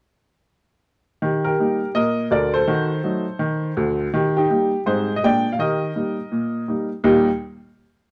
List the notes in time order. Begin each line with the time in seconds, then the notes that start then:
1.22 D#3 G4
1.44 G4 A#4
1.59 G3 A#3 D#4
1.95 A#2 A#4 D#5
2.31 D2 D3 A#4 D5
2.54 A4 C5
2.68 D#3 F#4
3.04 F#3 A3 D#4
3.39 D#3
3.77 D2 D3
4.14 D#3 G4
4.37 D#4 G4
4.50 G3 A#3 D#4
4.86 G#2 G3 C4 D#4 G#4 C5
5.16 D#5
5.23 A#2 G#3 A#3 D4 D5 G5
5.53 F5
5.59 D#3 G4 A#4 D#5
5.96 G3 A#3 D#4
6.32 A#2
6.68 G3 A#3 D#4
7.04 D#2 A#2 G3 A#3 D#4 G4